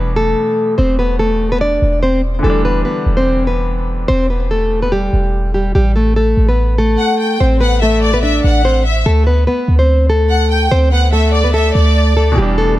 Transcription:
0.00 0.34 E1 loud
0.00 2.37 B2 medium
0.00 2.39 E3 medium
0.00 2.41 G3 medium
0.00 0.15 B3 medium
0.00 2.43 D4 medium
0.00 0.14 B4 medium
0.16 0.75 A3 medium
0.16 0.75 A4 medium
0.78 1.78 E1 loud
0.78 0.96 C4 medium
0.78 0.96 C5 loud
0.99 1.17 B3 medium
0.99 1.17 B4 medium
1.19 1.50 A3 medium
1.19 1.49 A4 medium
1.52 1.60 B3 medium
1.52 1.60 B4 medium
1.61 2.00 D4 medium
1.61 2.00 D5 medium
1.82 2.41 E1 loud
2.03 2.21 C4 medium
2.03 2.20 C5 medium
2.39 5.68 D3 medium
2.39 5.70 E3 medium
2.44 2.84 E1 loud
2.44 5.72 G3 medium
2.44 2.62 A3 medium
2.44 2.62 A4 loud
2.50 5.74 D4 medium
2.65 2.83 B3 medium
2.65 2.83 B4 medium
2.85 3.15 B3 medium
2.85 3.15 B4 medium
3.06 4.05 E1 loud
3.17 3.46 C4 medium
3.17 3.45 C5 medium
3.47 4.06 B3 medium
3.47 4.06 B4 medium
4.08 5.09 E1 loud
4.08 4.27 C4 medium
4.08 4.27 C5 loud
4.30 4.48 B3 medium
4.30 4.48 B4 medium
4.51 4.81 A3 medium
4.51 4.81 A4 medium
4.82 4.91 B3 medium
4.82 4.91 B4 medium
4.92 5.51 G3 medium
4.92 5.50 G4 medium
5.13 5.72 E1 loud
5.54 5.73 G3 medium
5.54 5.72 G4 medium
5.75 6.34 A1 loud
5.75 5.93 G3 medium
5.75 5.93 G4 loud
5.96 6.14 A3 medium
5.96 6.13 A4 medium
6.16 6.46 A3 medium
6.16 6.46 A4 medium
6.37 6.97 A1 loud
6.49 6.77 B3 medium
6.49 6.77 B4 medium
6.78 7.37 A3 medium
6.78 7.37 A4 medium
6.99 7.19 F#5 medium
7.20 7.39 G5 medium
7.40 8.40 A1 loud
7.40 7.59 C4 medium
7.40 7.58 C5 loud
7.61 7.79 B3 medium
7.61 7.79 B4 medium
7.61 7.81 F#5 medium
7.82 8.12 A3 medium
7.82 8.12 A4 medium
7.82 8.01 E5 medium
8.02 8.22 D5 loud
8.14 8.22 B3 medium
8.14 8.22 B4 medium
8.23 8.62 D4 medium
8.23 8.62 D5 medium
8.23 8.43 E5 medium
8.44 9.03 A1 loud
8.44 8.83 F#5 medium
8.65 8.83 C4 medium
8.65 8.83 C5 medium
8.85 9.05 E5 medium
9.06 9.46 D2 loud
9.06 9.24 A3 medium
9.06 9.24 A4 loud
9.27 9.45 B3 medium
9.27 9.44 B4 medium
9.47 9.77 B3 medium
9.47 9.77 B4 medium
9.68 10.67 D2 loud
9.79 10.08 C4 medium
9.79 10.07 C5 medium
10.10 10.68 A3 medium
10.10 10.68 A4 medium
10.30 10.50 F#5 medium
10.51 10.70 G5 medium
10.71 11.71 D2 loud
10.71 10.90 C4 medium
10.71 10.89 C5 loud
10.92 11.10 B3 medium
10.92 11.10 B4 medium
10.92 11.12 F#5 medium
11.12 11.43 A3 medium
11.12 11.42 A4 medium
11.12 11.32 E5 medium
11.34 11.53 D5 medium
11.44 11.53 B3 medium
11.44 11.53 B4 medium
11.54 12.13 A3 medium
11.54 12.12 A4 medium
11.54 11.74 E5 medium
11.75 12.35 D2 loud
11.75 12.33 D5 medium
12.17 12.35 A3 medium
12.17 12.34 A4 medium
12.32 12.79 B2 medium
12.32 12.79 E3 medium
12.37 12.79 E1 loud
12.37 12.56 G3 medium
12.37 12.79 G3 medium
12.37 12.55 G4 medium
12.42 12.79 D4 medium
12.58 12.76 A3 medium
12.58 12.76 A4 medium

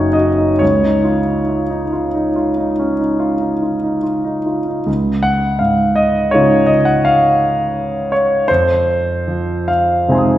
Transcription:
0.00 0.56 F#1 soft
0.00 0.38 D#4 soft
0.00 0.15 F#4 soft
0.00 0.14 C#5 medium
0.13 0.51 F#4 soft
0.13 0.59 D#5 soft
0.38 0.61 D#4 soft
0.59 4.83 C#2 soft
0.59 4.02 C#5 soft
0.84 1.19 D#4 soft
1.04 1.40 F4 soft
1.27 1.62 D#4 soft
1.49 1.84 F4 soft
1.70 2.06 D#4 soft
1.93 2.28 F4 soft
2.15 2.49 D#4 soft
2.36 2.70 F4 soft
2.58 2.91 D#4 soft
2.79 3.00 C#4 soft
3.00 3.33 D#4 soft
3.19 3.53 F4 soft
3.40 3.73 D#4 soft
3.62 3.95 F4 soft
3.83 4.03 D#4 soft
4.03 4.37 F4 soft
4.25 4.59 D#4 soft
4.46 4.80 F4 soft
4.68 4.88 D#4 soft
4.87 8.44 C#2 soft
5.23 5.61 F#5 medium
5.59 6.75 G#2 soft
5.59 5.96 F5 soft
5.96 6.32 D#5 medium
6.31 8.45 C#3 soft
6.31 8.45 G#3 soft
6.31 8.45 D#4 soft
6.31 8.45 F4 soft
6.31 6.68 C#5 medium
6.67 6.86 D#5 medium
6.85 7.04 F#5 medium
7.05 8.13 F5 medium
8.12 8.48 C#5 soft
8.48 10.38 F2 soft
8.48 9.68 C5 medium
9.28 10.38 F3 soft
9.68 10.38 F5 medium
10.08 10.38 C3 soft
10.08 10.38 G#3 soft
10.08 10.38 C4 soft
10.08 10.38 D#4 soft
10.08 10.38 C5 soft
10.08 10.38 G#5 soft
10.15 10.38 C6 soft
10.15 10.38 D#6 soft

